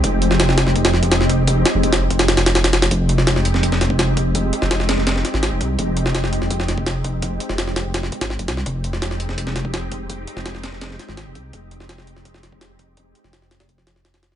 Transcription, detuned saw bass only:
\new Staff \with { instrumentName = "Detuned saw bass" } { \clef bass \time 4/4 \key f \minor \tempo 4 = 167 f,,4.~ f,,16 f,,8. f,,4.~ | f,,8 r16 f,,4 f,,8. f,,4. | f,,4.~ f,,16 f,,8. f,,4.~ | f,,8 r16 f,,4 f,,8. r16 aes,,8 f,,16 c,8 |
f,,4.~ f,,16 f,,8. f,,4.~ | f,,8 r16 f,,4 f,,8. r16 aes,,8 f,,16 c,8 | f,,4.~ f,,16 f,,8. f,,4.~ | f,,8 r16 f,,4 f,,8. r16 aes,,8 f,,16 c,8 |
f,,4.~ f,,16 f,,8. f,,4.~ | f,,8 r16 f,,4 f,,8. f,,4. | }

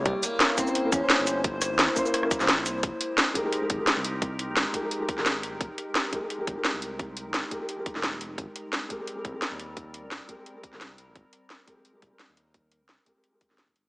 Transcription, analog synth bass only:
\new Staff \with { instrumentName = "Analog synth bass" } { \clef bass \time 4/4 \key f \minor \tempo 4 = 173 c,16 r2 r16 e,16 r8 g,,8.~ | g,,8. e,16 e,16 r4. c,16 bes,,8 c,8 | f,,16 r2 r16 aes,,16 r8 c,8.~ | c,8. bes,,16 aes,,16 r4. f,,16 aes,,8 bes,,16 f,,16 |
f,,16 r2 r16 aes,,16 r8 c,8.~ | c,8. bes,,16 aes,,16 r4. f,,16 ees,,8 f,,8 | aes,,16 r2 r16 c,16 r8 ees,8.~ | ees,8. c,16 c,16 r4. aes,,16 c,8 c,16 aes,,16 |
aes,,16 r2 r16 c,16 r8 ees,8.~ | ees,8. c,16 c,16 r4. aes,,16 ees,,8 aes,,8 | }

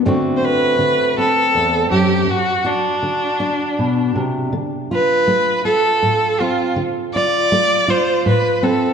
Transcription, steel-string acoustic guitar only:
\new Staff \with { instrumentName = "Steel-string acoustic guitar" } { \time 3/4 \key d \mixolydian \tempo 4 = 80 << { <d a c' fis'>4. c'4. | r8 fis'4 d'4. | r8 f'4 f'4 c'8 | r8 f'4 f'4 c'8 | } \\ { fis,4 d4 e,8 fis,8 | g,4 d4 b,8 c8 | d4 a4 a,4 | d4 a4 a,4 | } >> }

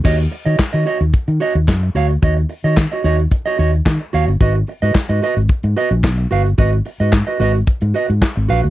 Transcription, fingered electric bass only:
\new Staff \with { instrumentName = "Fingered electric bass" } { \clef bass \time 4/4 \key ees \minor \tempo 4 = 110 ees,8 r16 ees16 r16 ees16 r16 ees,16 r16 ees16 r16 ees,16 ges,8 d,8 | ees,8 r16 ees8 r16 ees,8 r8 ees,8 ees16 r16 ees,16 g,,16 | aes,,8 r16 aes,16 r16 aes,16 r16 aes,,16 r16 aes,16 r16 bes,,16 ces,8 g,,8 | aes,,8 r16 aes,8 r16 aes,,8 r16 aes,16 r16 aes,16 r16 aes,,16 bes,,16 d,16 | }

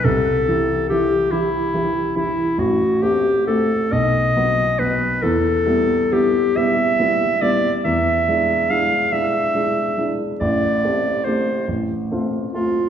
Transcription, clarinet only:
\new Staff \with { instrumentName = "Clarinet" } { \time 6/8 \key e \minor \tempo 4. = 47 a'4 g'8 e'4 e'8 | fis'8 g'8 a'8 dis''4 b'8 | a'4 g'8 e''4 d''8 | e''4 f''8 e''4 r8 |
d''4 c''8 r4 f'8 | }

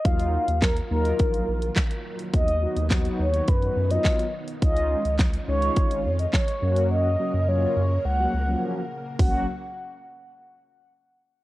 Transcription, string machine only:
\new Staff \with { instrumentName = "String machine" } { \time 4/4 \key fis \major \tempo 4 = 105 << { <ais eis'>1 | <b dis'>1 | <cis' eis'>2.~ <cis' eis'>8 <ais ais'>8~ | <ais ais'>1 |
<cis fis ais fis'>8 r2. r8 | } \\ { <dis fis>1~ | <dis fis>1 | <dis gis>2.~ <dis gis>8 cis8~ | cis1 |
r1 | } >> }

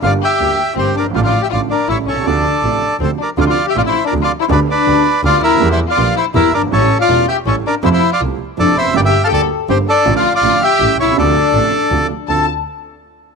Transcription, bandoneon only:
\new Staff \with { instrumentName = "Bandoneon" } { \time 3/4 \key d \minor \tempo 4 = 162 << { f''8 g''4. c''8 d''8 | f''16 f''8 g''16 f''8 d''8 e''8 cis''8 | d''2 c''8 d''8 | f''16 f''8 g''16 f''16 e''8 d''8 f''8 e''16 |
d''8 d''4. f''8 e''8~ | e''16 e''8 f''8. e''8 e''8 d''8 | cis''8. f''8. g''8 cis''8 d''8 | e''16 e''8 f''8 r8. d''8 e''8 |
g''16 g''8 a''32 g''32 a''16 r8. c''8 d''8~ | d''16 f''8 f''8. g''4 e''8 | d''2~ d''8 r8 | a'8 r2 r8 | } \\ { d''8 e''4. g'8 bes'8 | d''16 d''8 e''16 d''8 bes'8 cis''8 a'8 | a'2 a'8 bes'8 | d''16 d''8 e''16 d''16 c''8 bes'8 d''8 c''16 |
b'8 b'4. d''8 bes'8~ | bes'16 c''8 d''8. c''8 bes'8 bes'8 | a'8. d''8. e''8 a'8 bes'8 | c''16 c''8 d''8 r8. a'8 c''8 |
d''16 e''8 f''16 d''16 r8. g'8 a'8~ | a'16 d''8 d''8. e''4 cis''8 | a'2~ a'8 r8 | r2. | } >> }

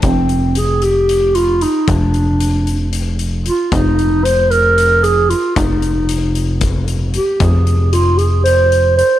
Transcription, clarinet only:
\new Staff \with { instrumentName = "Clarinet" } { \time 7/8 \key f \dorian \tempo 4 = 114 c'4 aes'8 g'4 f'8 ees'8 | d'2 r4 f'8 | ees'4 c''8 bes'4 aes'8 f'8 | ees'2 r4 g'8 |
aes'4 f'8 aes'8 c''4 c''8 | }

